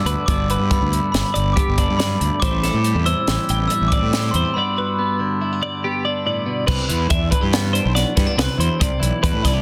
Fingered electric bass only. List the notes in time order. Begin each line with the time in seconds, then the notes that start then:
0.05 D2
0.28 G1
0.60 G2
0.81 D2
1.14 G1
1.36 G1
1.68 G1
1.90 G2
2.21 D2
2.42 A1
2.74 A2
2.95 E2
3.28 A1
3.49 A1
3.81 A1
4.02 A2
4.34 E2
6.68 C2
6.90 E2
7.11 E2
7.42 G2
7.85 B1
8.17 G2
8.38 C2
8.58 E2
8.81 C2
9.01 B1
9.23 E2
9.32 A2
9.45 C2